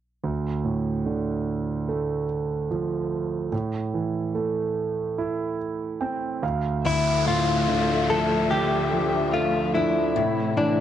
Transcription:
0.24 D2
0.65 A2
1.06 D3
1.88 A3
2.71 F3
3.52 A2
3.94 E3
4.35 A3
5.18 E4
6.01 C4 G5
6.43 D2 F5
6.84 D2 D3 F3 A3 E4 E5, downlifter
7.26 A2 E4 F4
7.68 D3
8.10 F3 A4
8.51 D3 D4 G4
8.93 F3
9.34 A3 F4
9.74 F3 D4 E4
10.16 A2 C3 E3 A3 E4
10.57 E3 D4 E4

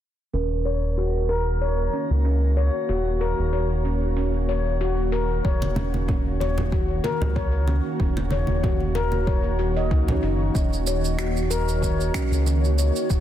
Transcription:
0.33 D#1 D#3 C#4 A#4
0.58 A#3
0.65 C#5
0.98 F#4
1.29 A#4
1.47 F#4
1.57 C#5
1.61 C#5
1.93 C#4
2.10 C#2
2.25 C#4
2.57 C#5
2.89 D#1 F#4
3.21 A#4
3.38 D#1
3.53 C#5
3.85 C#4
4.17 C#4
4.49 C#5
4.81 F#4
5.12 A#4
5.44 D#1 C#5, kick
5.62 muted conga
5.76 C#4, high conga
5.94 high conga
6.08 C#4, kick, low conga
6.40 C#5, muted conga
6.58 muted conga, low conga
6.72 F#4, kick
7.04 A#4, muted conga
7.21 C#2, low conga
7.36 C#5, kick
7.67 C#4, muted conga
8.00 D#1 C#4, kick
8.17 muted conga
8.30 C#5, high conga
8.47 D#1, high conga
8.63 F#4, kick, low conga
8.80 high conga
8.95 A#4, muted conga
9.12 muted conga
9.27 C#5, kick
9.59 F#4
9.77 D#5
9.91 C#2 D#4, kick
10.08 C#4, low conga
10.23 F#1 D#4
10.55 D#1 C#4 D#5, kick, shaker
10.73 shaker
10.87 C#5, shaker
11.05 shaker
11.19 F#4, finger snap, shaker
11.37 shaker
11.50 A#4, shaker
11.69 shaker
11.82 C#5, kick, shaker
12.00 shaker
12.14 C#4, finger snap, kick, shaker
12.31 C#2, shaker
12.47 C#4, shaker
12.64 shaker
12.79 C#5, shaker
12.96 shaker
13.10 D#1 F#4, kick, shaker

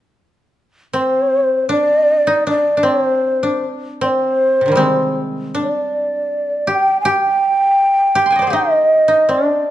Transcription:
0.93 C4 C5
1.69 D4 D5
2.27 D#4
2.47 D4 D5
2.77 D4
2.83 C4
2.88 C5
3.43 D4
4.01 C4 D5
4.08 C5
4.61 C3
4.66 D3 D#3
4.72 G3 G#3
4.77 C4
5.55 D4
5.63 D5
6.67 G4
6.74 G5
7.01 G#5
7.05 G4
7.10 G5
8.15 G4
8.26 C6
8.30 G5 G#5
8.36 D5 D#5
8.42 C5
8.47 G4 G#4
8.53 D#4 D#5
9.08 D#4
9.29 D4 D5

